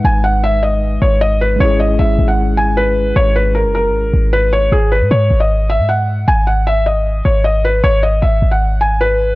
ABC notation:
X:1
M:4/4
L:1/16
Q:1/4=154
K:G#m
V:1 name="Felt piano"
g2 f2 e2 d4 c2 d2 B2 | c2 d2 e3 f3 g2 B4 | c2 B2 A2 A6 B2 c2 | G2 B2 c3 d3 e2 f4 |
g2 f2 e2 d4 c2 d2 B2 | c2 d2 e3 f3 g2 B4 |]
V:2 name="Tine electric piano"
[G,DB]16 | [G,CEG]16- | [G,CEG]16 | z16 |
z16 | z16 |]
V:3 name="808-style bass" clef=bass
G,,,8- G,,,2 G,,,6 | G,,,4 G,,,2 G,,,8- G,,,2 | G,,,4- G,,, F,,,2- F,,,/2 G,,,2- G,,,/2 G,,,6 | G,,,3 G,, G,,2 G,,,4- G,,, G,,4- G,, |
G,,,8- G,,,2 G,,,6 | G,,,4 G,,,2 G,,,8- G,,,2 |]